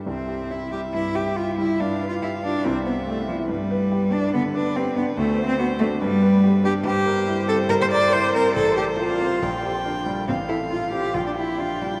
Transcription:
<<
  \new Staff \with { instrumentName = "Violin" } { \time 4/4 \key c \major \tempo 4 = 141 e''1 | f''2 e''2 | b'1 | c''2 b'2 |
\key f \major c''1~ | c''2 g''2 | f''2 g''2 | }
  \new Staff \with { instrumentName = "Cello" } { \time 4/4 \key c \major c'4 e'8 g'8 e'8 g'8 f'8 e'8 | \tuplet 3/2 { d'4 f'8 } e'8 d'8 c'8 b8 a8 f8 | g4. d'8 b8 d'8 c'8 b8 | \tuplet 3/2 { a4 c'8 } b8 a8 g4. g'8 |
\key f \major g'4. a'8 bes'16 c''16 d''8 c''8 bes'8 | a'8 g'8 f'2~ f'8 r8 | c'8 e'8 f'8 g'8 f'16 d'16 e'8 f'8 d'8 | }
  \new Staff \with { instrumentName = "Grand piano" } { \time 4/4 \key c \major c,8 g'8 e'8 g8 g,8 g'8 e'8 g8 | g,8 b'8 g'8 f'8 c,8 c''8 g'8 e'8 | g,8 b'8 g'8 d'8 d8 b'8 g'8 d'8 | d,8 c''8 fis'8 d'8 g,8 b'8 g'8 d'8 |
\key f \major g,8 bes'8 e'8 c'8 g8 bes'8 e'8 c'8 | a,,8 a'8 f'8 c'8 bes,,8 g'8 d'8 g8 | a,,8 a'8 f'8 c'8 bes,,8 g'8 d'8 g8 | }
>>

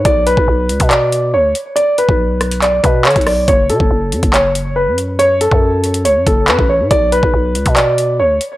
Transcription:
<<
  \new Staff \with { instrumentName = "Grand piano" } { \time 4/4 \key b \dorian \tempo 4 = 140 d''8 b'4. d''4 cis''8 r8 | d''8 b'4. d''8 b'8 cis''8 d''8 | cis''8 a'4. cis''4 b'8 r8 | cis''8 a'4. cis''8 a'8 b'8 cis''8 |
d''8 b'4. d''4 cis''8 r8 | }
  \new Staff \with { instrumentName = "808-style bass" } { \clef bass \time 4/4 \key b \dorian b,,8. b,,16 b,,8 cis,16 b,4~ b,16 d,8 r8 | r8. b,,4.~ b,,16 b,8 d16 b,,8. | fis,,8 cis16 fis,,16 fis,,8 fis,16 fis,,4. fis,8.~ | fis,8. fis,4~ fis,16 cis,16 fis,16 fis,,8 fis,16 a,,8 a,16 |
b,,8. b,,16 b,,8 cis,16 b,4~ b,16 d,8 r8 | }
  \new DrumStaff \with { instrumentName = "Drums" } \drummode { \time 4/4 <hh bd>8 hh16 bd16 r8 hh16 <hh bd>16 <hc hh>8 hh8 r8 hh8 | hh8 hh16 bd16 r8 <hh ss>16 hh16 <hc hh>8 <hh bd>8 <hc hh>32 hh32 <hh bd>32 hh32 <hho ss>8 | <hh bd>8 hh16 bd16 r8 hh16 <hh bd>16 <hc hh>8 hh8 r8 hh8 | hh8 hh16 bd16 r8 hh16 hh16 hh8 <hh bd>8 <hc hh>16 bd8. |
<hh bd>8 hh16 bd16 r8 hh16 <hh bd>16 <hc hh>8 hh8 r8 hh8 | }
>>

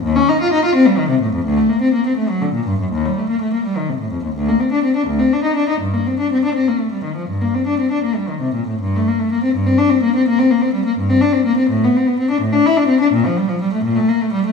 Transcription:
\new Staff \with { instrumentName = "Cello" } { \time 12/8 \key g \minor \tempo 4. = 84 ees,16 des'16 ees'16 f'16 ees'16 f'16 c'16 g16 ees16 c16 a,16 f,16 d,16 a16 bes16 c'16 bes16 c'16 a16 fis16 d16 bes,16 g,16 fis,16 | ees,16 g16 a16 bes16 a16 bes16 g16 ees16 c16 a,16 f,16 ees,16 d,16 bes16 c'16 d'16 c'16 d'16 d,16 c'16 d'16 ees'16 d'16 ees'16 | g,16 bes16 c'16 d'16 c'16 d'16 c'16 bes16 a16 g16 ees16 f16 g,16 bes16 c'16 d'16 c'16 d'16 bes16 g16 ees16 c16 bes,16 a,16 | g,16 a16 bes16 a16 bes16 c'16 g,16 c'16 d'16 c'16 bes16 c'16 bes16 c'16 bes16 c'16 g16 bes16 g,16 c'16 d'16 c'16 bes16 c'16 |
a,16 b16 c'16 b16 c'16 d'16 a,16 d'16 e'16 d'16 c'16 d'16 bes,16 f16 g16 f16 g16 a16 bes,16 a16 bes16 a16 g16 a16 | }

